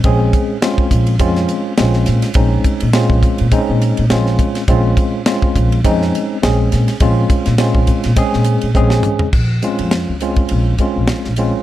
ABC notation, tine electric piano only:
X:1
M:4/4
L:1/8
Q:"Swing 16ths" 1/4=103
K:Bbm
V:1 name="Tine electric piano"
[A,CDA]2 [A,CDF]2 [A,CDF]2 [A,CDF]2 | [A,CDE]2 [A,CDF]2 [A,CDE]2 [A,CDF]2 | [A,CDF]2 [A,CDF]2 [A,CDE]2 [A,CDA]2 | [A,CDF]2 [A,CDF]2 [A,CDA]2 [A,CDA]2 |
z [A,CDF]2 [A,CDF]2 [A,CDF]2 [A,CDF] |]